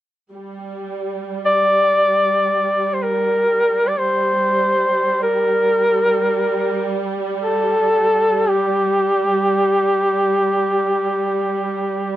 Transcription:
0, 0, Header, 1, 3, 480
1, 0, Start_track
1, 0, Key_signature, -2, "minor"
1, 0, Tempo, 500000
1, 11677, End_track
2, 0, Start_track
2, 0, Title_t, "Duduk"
2, 0, Program_c, 0, 69
2, 1394, Note_on_c, 0, 74, 87
2, 2819, Note_on_c, 0, 72, 45
2, 2834, Note_off_c, 0, 74, 0
2, 2909, Note_on_c, 0, 70, 78
2, 2923, Note_off_c, 0, 72, 0
2, 3732, Note_on_c, 0, 74, 51
2, 3746, Note_off_c, 0, 70, 0
2, 3827, Note_on_c, 0, 72, 72
2, 3841, Note_off_c, 0, 74, 0
2, 5013, Note_off_c, 0, 72, 0
2, 5019, Note_on_c, 0, 70, 82
2, 6787, Note_off_c, 0, 70, 0
2, 7128, Note_on_c, 0, 69, 78
2, 8147, Note_on_c, 0, 67, 65
2, 8162, Note_off_c, 0, 69, 0
2, 11677, Note_off_c, 0, 67, 0
2, 11677, End_track
3, 0, Start_track
3, 0, Title_t, "String section"
3, 0, Program_c, 1, 48
3, 320, Note_on_c, 1, 55, 32
3, 11677, Note_off_c, 1, 55, 0
3, 11677, End_track
0, 0, End_of_file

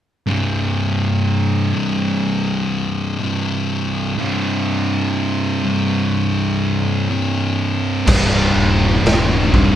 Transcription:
0, 0, Header, 1, 5, 480
1, 0, Start_track
1, 0, Tempo, 975610
1, 127, Time_signature, 4, 2, 24, 8
1, 4799, End_track
2, 0, Start_track
2, 0, Title_t, "Synth drone"
2, 0, Program_c, 0, 95
2, 3978, Note_on_c, 0, 48, 74
2, 3980, Note_on_c, 0, 55, 69
2, 3980, Note_on_c, 0, 62, 85
2, 4799, Note_off_c, 0, 48, 0
2, 4799, Note_off_c, 0, 55, 0
2, 4799, Note_off_c, 0, 62, 0
2, 4799, End_track
3, 0, Start_track
3, 0, Title_t, "Distorted electric guitar"
3, 0, Program_c, 1, 30
3, 130, Note_on_c, 1, 36, 83
3, 134, Note_on_c, 1, 43, 95
3, 140, Note_on_c, 1, 48, 94
3, 837, Note_off_c, 1, 43, 0
3, 849, Note_off_c, 1, 48, 0
3, 851, Note_on_c, 1, 48, 91
3, 857, Note_on_c, 1, 43, 79
3, 861, Note_off_c, 1, 36, 0
3, 863, Note_on_c, 1, 36, 71
3, 1560, Note_off_c, 1, 43, 0
3, 1570, Note_off_c, 1, 36, 0
3, 1572, Note_on_c, 1, 36, 70
3, 1576, Note_on_c, 1, 43, 72
3, 1584, Note_off_c, 1, 48, 0
3, 1586, Note_on_c, 1, 48, 86
3, 2039, Note_off_c, 1, 43, 0
3, 2053, Note_off_c, 1, 36, 0
3, 2055, Note_on_c, 1, 36, 91
3, 2058, Note_on_c, 1, 43, 90
3, 2059, Note_off_c, 1, 48, 0
3, 2061, Note_on_c, 1, 48, 99
3, 2760, Note_off_c, 1, 36, 0
3, 2761, Note_off_c, 1, 43, 0
3, 2763, Note_off_c, 1, 48, 0
3, 2772, Note_on_c, 1, 48, 88
3, 2777, Note_on_c, 1, 43, 85
3, 2783, Note_on_c, 1, 36, 75
3, 3478, Note_off_c, 1, 48, 0
3, 3480, Note_off_c, 1, 43, 0
3, 3484, Note_off_c, 1, 36, 0
3, 3491, Note_on_c, 1, 36, 74
3, 3497, Note_on_c, 1, 43, 71
3, 3499, Note_on_c, 1, 48, 81
3, 3957, Note_off_c, 1, 36, 0
3, 3960, Note_off_c, 1, 43, 0
3, 3961, Note_off_c, 1, 48, 0
3, 3970, Note_on_c, 1, 36, 99
3, 3978, Note_on_c, 1, 43, 101
3, 3980, Note_on_c, 1, 48, 94
3, 4680, Note_off_c, 1, 43, 0
3, 4683, Note_off_c, 1, 48, 0
3, 4685, Note_on_c, 1, 48, 95
3, 4689, Note_on_c, 1, 43, 83
3, 4692, Note_off_c, 1, 36, 0
3, 4694, Note_on_c, 1, 36, 78
3, 4799, Note_off_c, 1, 36, 0
3, 4799, Note_off_c, 1, 43, 0
3, 4799, Note_off_c, 1, 48, 0
3, 4799, End_track
4, 0, Start_track
4, 0, Title_t, "Fingered electric bass"
4, 0, Program_c, 2, 33
4, 3973, Note_on_c, 2, 24, 106
4, 4180, Note_off_c, 2, 24, 0
4, 4206, Note_on_c, 2, 27, 89
4, 4416, Note_off_c, 2, 27, 0
4, 4448, Note_on_c, 2, 27, 92
4, 4799, Note_off_c, 2, 27, 0
4, 4799, End_track
5, 0, Start_track
5, 0, Title_t, "Drums"
5, 3972, Note_on_c, 9, 49, 116
5, 3972, Note_on_c, 9, 57, 67
5, 3974, Note_on_c, 9, 36, 118
5, 4021, Note_off_c, 9, 49, 0
5, 4021, Note_off_c, 9, 57, 0
5, 4024, Note_off_c, 9, 36, 0
5, 4456, Note_on_c, 9, 57, 67
5, 4461, Note_on_c, 9, 38, 110
5, 4506, Note_off_c, 9, 57, 0
5, 4511, Note_off_c, 9, 38, 0
5, 4693, Note_on_c, 9, 36, 91
5, 4742, Note_off_c, 9, 36, 0
5, 4799, End_track
0, 0, End_of_file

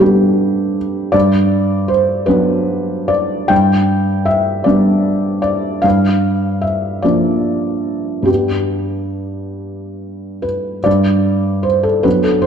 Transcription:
0, 0, Header, 1, 2, 480
1, 0, Start_track
1, 0, Key_signature, 1, "major"
1, 0, Tempo, 757576
1, 723, Time_signature, 6, 3, 24, 8
1, 1205, Tempo, 803213
1, 2165, Tempo, 782269
1, 4085, Tempo, 821918
1, 5045, Tempo, 859599
1, 6485, Tempo, 789474
1, 7461, End_track
2, 0, Start_track
2, 0, Title_t, "Felt piano"
2, 0, Program_c, 0, 0
2, 0, Control_c, 0, 64, 127
2, 0, Note_on_c, 0, 43, 52
2, 0, Note_on_c, 0, 67, 61
2, 0, Note_on_c, 0, 69, 60
2, 0, Note_on_c, 0, 71, 69
2, 3, Note_on_c, 0, 55, 38
2, 8, Note_on_c, 0, 59, 39
2, 8, Note_on_c, 0, 62, 42
2, 476, Note_off_c, 0, 67, 0
2, 697, Note_off_c, 0, 55, 0
2, 699, Note_off_c, 0, 59, 0
2, 699, Note_off_c, 0, 62, 0
2, 709, Note_on_c, 0, 74, 75
2, 721, Note_off_c, 0, 43, 0
2, 721, Note_on_c, 0, 43, 54
2, 735, Control_c, 0, 64, 0
2, 736, Note_off_c, 0, 69, 0
2, 738, Note_off_c, 0, 71, 0
2, 825, Control_c, 0, 64, 127
2, 1192, Note_on_c, 0, 72, 61
2, 1198, Note_off_c, 0, 74, 0
2, 1413, Note_off_c, 0, 43, 0
2, 1419, Note_on_c, 0, 71, 71
2, 1429, Note_off_c, 0, 72, 0
2, 1431, Note_on_c, 0, 54, 40
2, 1432, Note_on_c, 0, 59, 38
2, 1434, Note_on_c, 0, 62, 43
2, 1909, Note_on_c, 0, 74, 63
2, 1915, Note_off_c, 0, 71, 0
2, 2140, Note_off_c, 0, 54, 0
2, 2140, Note_off_c, 0, 59, 0
2, 2141, Note_off_c, 0, 62, 0
2, 2149, Note_on_c, 0, 79, 77
2, 2157, Note_on_c, 0, 43, 52
2, 2159, Note_off_c, 0, 74, 0
2, 2176, Control_c, 0, 64, 0
2, 2285, Control_c, 0, 64, 127
2, 2623, Note_on_c, 0, 76, 69
2, 2633, Note_off_c, 0, 79, 0
2, 2853, Note_off_c, 0, 43, 0
2, 2860, Note_on_c, 0, 74, 57
2, 2869, Note_off_c, 0, 76, 0
2, 2872, Note_on_c, 0, 55, 36
2, 2872, Note_on_c, 0, 59, 36
2, 2875, Note_on_c, 0, 62, 38
2, 3328, Note_off_c, 0, 74, 0
2, 3338, Note_on_c, 0, 74, 63
2, 3569, Note_off_c, 0, 55, 0
2, 3569, Note_off_c, 0, 59, 0
2, 3571, Note_off_c, 0, 62, 0
2, 3582, Note_on_c, 0, 77, 76
2, 3588, Note_off_c, 0, 74, 0
2, 3594, Note_on_c, 0, 43, 46
2, 3609, Control_c, 0, 64, 0
2, 3712, Control_c, 0, 64, 127
2, 4071, Note_on_c, 0, 76, 53
2, 4079, Note_off_c, 0, 77, 0
2, 4301, Note_off_c, 0, 43, 0
2, 4311, Note_on_c, 0, 74, 57
2, 4316, Note_off_c, 0, 76, 0
2, 4320, Note_on_c, 0, 53, 32
2, 4321, Note_on_c, 0, 58, 35
2, 4325, Note_on_c, 0, 62, 36
2, 5012, Note_on_c, 0, 43, 39
2, 5018, Note_on_c, 0, 55, 27
2, 5022, Note_off_c, 0, 53, 0
2, 5023, Note_off_c, 0, 58, 0
2, 5025, Note_off_c, 0, 62, 0
2, 5026, Note_on_c, 0, 59, 29
2, 5029, Note_on_c, 0, 67, 51
2, 5034, Note_on_c, 0, 62, 28
2, 5041, Note_off_c, 0, 74, 0
2, 5058, Control_c, 0, 64, 0
2, 5149, Control_c, 0, 64, 127
2, 6241, Note_on_c, 0, 71, 49
2, 6243, Note_off_c, 0, 67, 0
2, 6448, Note_off_c, 0, 43, 0
2, 6450, Note_off_c, 0, 55, 0
2, 6454, Note_off_c, 0, 59, 0
2, 6458, Note_off_c, 0, 62, 0
2, 6472, Note_on_c, 0, 74, 64
2, 6481, Note_off_c, 0, 71, 0
2, 6483, Note_on_c, 0, 43, 51
2, 6497, Control_c, 0, 64, 0
2, 6581, Control_c, 0, 64, 127
2, 6953, Note_on_c, 0, 72, 59
2, 6961, Note_off_c, 0, 74, 0
2, 7077, Note_on_c, 0, 69, 59
2, 7081, Note_off_c, 0, 72, 0
2, 7185, Note_off_c, 0, 43, 0
2, 7198, Note_on_c, 0, 71, 69
2, 7203, Note_off_c, 0, 69, 0
2, 7207, Note_on_c, 0, 54, 37
2, 7207, Note_on_c, 0, 59, 37
2, 7210, Note_on_c, 0, 62, 36
2, 7221, Control_c, 0, 64, 0
2, 7306, Control_c, 0, 64, 127
2, 7320, Note_on_c, 0, 69, 52
2, 7323, Note_off_c, 0, 71, 0
2, 7432, Note_on_c, 0, 72, 70
2, 7443, Note_off_c, 0, 69, 0
2, 7461, Note_off_c, 0, 54, 0
2, 7461, Note_off_c, 0, 59, 0
2, 7461, Note_off_c, 0, 62, 0
2, 7461, Note_off_c, 0, 72, 0
2, 7461, End_track
0, 0, End_of_file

